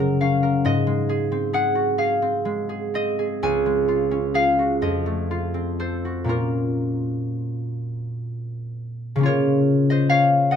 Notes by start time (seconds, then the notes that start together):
Already playing: F#2 C#3 F#3 C#4 F#5
0.00 A#4
0.21 C#4 F5
0.43 A#4
0.65 G#2 D#5
0.87 G#3
1.09 G#4
1.32 C4
1.53 G#4 F#5
1.75 F#4
1.98 G#4 F5
2.22 C4
2.45 G#3
2.69 G#4
2.94 C4 D#5
3.19 G#4
3.43 C#2 G#5
3.66 G#3
3.88 F4
4.11 C#4
4.34 G#4 F5
4.59 F#4
4.82 F2 D#5
5.06 A3
5.31 F4
5.54 C4
5.80 A4 C5
6.05 F#4
6.24 A#2 A#3 C#4
6.29 F4 A#4
9.16 C#3 A#3
9.21 C#4 F4
9.26 A#4 C#5
9.90 C5 D#5
10.09 C#5 F5
10.51 D#5 F#5